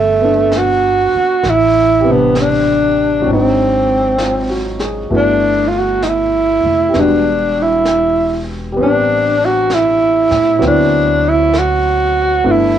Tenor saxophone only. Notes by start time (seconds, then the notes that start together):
Already playing: A3
0.58 F#4
1.49 E4
2.12 B3
2.42 D4
3.33 C4
5.17 D4
5.68 F4
5.79 F#4
6.04 D#4
6.08 E4
6.99 D4
7.62 E4
8.82 D4
9.45 F#4
9.74 E4
10.66 D4
11.28 E4
11.59 F#4
12.51 E4